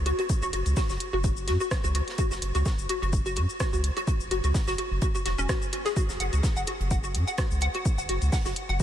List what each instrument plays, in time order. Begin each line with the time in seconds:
Already playing: sub bass C#2
0.06 synth arpeggio sound F#4, closed hi-hat
0.19 synth arpeggio sound F#4, closed hi-hat
0.29 kick, closed hi-hat, cabasa
0.42 sub bass F#1, synth arpeggio sound F#4, cabasa
0.53 sub bass F#1, synth arpeggio sound F#4, closed hi-hat
0.66 sub bass C#2, closed hi-hat, cabasa
0.76 synth arpeggio sound F#4, kick, snare, open hi-hat, cabasa
0.90 sub bass F#1, synth arpeggio sound F#4, snare, cabasa
1.00 closed hi-hat
1.13 sub bass F#1, synth arpeggio sound F#4
1.24 synth arpeggio sound F#4, kick, closed hi-hat, cabasa
1.37 cabasa
1.48 sub bass F#2, synth arpeggio sound F#4, snare, closed hi-hat
1.60 synth arpeggio sound F#4, cabasa
1.71 kick, cross-stick, snare, closed hi-hat, cabasa
1.84 sub bass C#2, synth arpeggio sound F#4, cabasa
1.95 synth arpeggio sound F#4, closed hi-hat
2.08 snare, closed hi-hat
2.18 synth arpeggio sound F#4, kick, closed hi-hat, cabasa
2.31 sub bass F#1, synth arpeggio sound F#4, snare, cabasa
2.42 sub bass F#1, closed hi-hat
2.55 sub bass C#2, synth arpeggio sound F#4, closed hi-hat, cabasa
2.66 synth arpeggio sound F#4, kick, snare, closed hi-hat, cabasa
2.79 sub bass F#1, cabasa
2.89 synth arpeggio sound F#4, closed hi-hat
3.02 sub bass F#1, synth arpeggio sound F#4, closed hi-hat
3.13 kick, closed hi-hat, cabasa
3.26 synth arpeggio sound F#4, cabasa
3.36 sub bass F#2, synth arpeggio sound F#4, closed hi-hat
3.49 cabasa
3.60 synth arpeggio sound F#4, kick, cross-stick, snare, closed hi-hat, cabasa
3.73 sub bass C#2, synth arpeggio sound F#4, cabasa
3.84 closed hi-hat
3.97 synth arpeggio sound F#4, closed hi-hat
4.07 synth arpeggio sound F#4, kick, closed hi-hat, cabasa
4.20 sub bass F#1, cabasa
4.31 sub bass F#1, synth arpeggio sound F#4, closed hi-hat
4.44 sub bass C#2, synth arpeggio sound F#4, closed hi-hat, cabasa
4.54 kick, snare, open hi-hat, cabasa
4.68 sub bass F#1, synth arpeggio sound F#4, snare, cabasa
4.78 synth arpeggio sound F#4, closed hi-hat
4.91 sub bass F#1
5.02 synth arpeggio sound F#4, kick, closed hi-hat, cabasa
5.15 synth arpeggio sound F#4, cabasa
5.26 sub bass E1, synth arpeggio sound F#4, snare, closed hi-hat
5.38 sub bass E1, synth arpeggio sound C#4, cabasa
5.49 synth arpeggio sound F#4, kick, cross-stick, snare, closed hi-hat, cabasa
5.62 cabasa
5.73 synth arpeggio sound F#4, closed hi-hat
5.85 synth arpeggio sound G#4, snare, closed hi-hat, cabasa
5.96 synth arpeggio sound F#4, kick, closed hi-hat, cabasa
6.09 sub bass F#1, snare, cabasa
6.20 sub bass F#1, synth arpeggio sound F#5, closed hi-hat
6.33 sub bass C#2, synth arpeggio sound F#4, closed hi-hat, cabasa
6.43 kick, snare, closed hi-hat, cabasa
6.57 sub bass F#1, synth arpeggio sound F#5, cabasa
6.67 synth arpeggio sound F#4, closed hi-hat
6.80 sub bass F#1, closed hi-hat
6.91 synth arpeggio sound F#5, kick, closed hi-hat, cabasa
7.04 synth arpeggio sound F#4, cabasa
7.15 sub bass F#2, closed hi-hat
7.27 synth arpeggio sound F#5, cabasa
7.38 synth arpeggio sound F#4, kick, cross-stick, snare, closed hi-hat, cabasa
7.51 sub bass C#2, cabasa
7.61 synth arpeggio sound F#5, closed hi-hat
7.74 synth arpeggio sound F#4, closed hi-hat
7.85 kick, closed hi-hat, cabasa
7.98 sub bass F#1, synth arpeggio sound F#5, cabasa
8.09 sub bass F#1, synth arpeggio sound F#4, closed hi-hat
8.22 sub bass C#2, closed hi-hat, cabasa
8.32 synth arpeggio sound F#5, kick, snare, open hi-hat, cabasa
8.45 sub bass F#1, synth arpeggio sound F#4, snare, cabasa
8.56 closed hi-hat
8.69 sub bass F#1, synth arpeggio sound F#5